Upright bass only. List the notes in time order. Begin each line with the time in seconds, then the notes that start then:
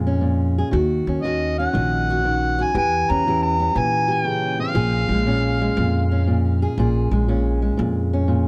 Already playing: F2
0.73 D#2
1.07 D#2
1.75 A#1
2.75 E2
3.10 E2
3.76 A#2
4.75 A#1
5.09 A#1
5.77 F2
6.78 A#1
7.11 A#1
7.79 F2